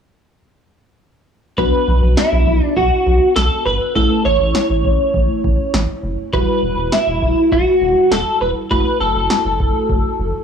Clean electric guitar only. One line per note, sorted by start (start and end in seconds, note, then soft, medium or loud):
1.58 2.19 B4 medium
2.17 2.64 E4 medium
2.64 2.76 D4 medium
2.77 3.32 F#4 medium
3.36 3.64 A4 medium
3.66 3.95 B4 medium
3.95 4.23 A4 loud
4.25 5.99 C#5 medium
6.34 6.95 B4 loud
6.93 7.52 E4 medium
7.52 8.13 F#4 medium
8.12 8.41 A4 loud
8.41 8.49 B4 medium
8.71 9.00 B4 loud
9.01 10.44 A4 medium